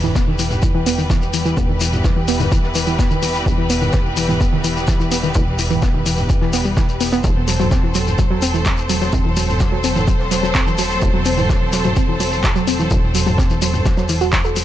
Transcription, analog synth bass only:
0.00 1.55 E1 medium
1.57 3.44 E1 medium
3.46 5.33 E1 medium
5.35 7.22 E1 medium
7.24 9.11 E1 medium
9.13 11.00 E1 medium
11.02 12.89 E1 medium
12.91 14.65 E1 medium

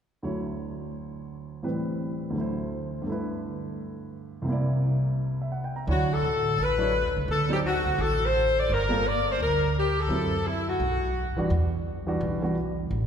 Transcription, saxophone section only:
5.91 6.10 F#4 medium
6.14 6.60 A4 medium
6.63 7.18 B4 medium
7.31 7.51 A4 medium
7.53 7.58 G4 medium
7.67 7.98 F#4 medium
8.01 8.23 A4 medium
8.26 8.59 C5 medium
8.59 8.70 D5 medium
8.73 9.06 A#4 medium
9.07 9.28 D5 loud
9.32 9.42 C5 medium
9.43 9.74 A#4 medium
9.78 9.99 G4 medium
10.00 10.46 A4 medium
10.46 10.68 E4 medium
10.69 11.35 F#4 medium

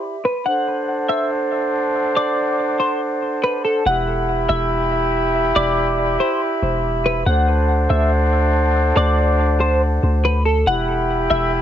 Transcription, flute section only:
0.00 0.16 E4 medium
0.00 0.20 G4 medium
0.00 0.23 E5 medium
0.00 0.17 B5 medium
0.46 3.83 D4 medium
0.46 3.83 A4 medium
0.46 3.83 C5 medium
0.46 3.83 F#5 medium
3.86 7.23 E4 medium
3.86 7.23 G4 medium
3.86 7.23 E5 medium
3.86 7.23 B5 medium
7.27 10.41 D4 medium
7.27 10.43 A4 medium
7.27 10.39 C5 medium
7.27 10.37 F#5 medium
10.67 11.62 E4 medium
10.67 11.62 G4 medium
10.67 11.62 E5 medium
10.67 11.62 B5 medium

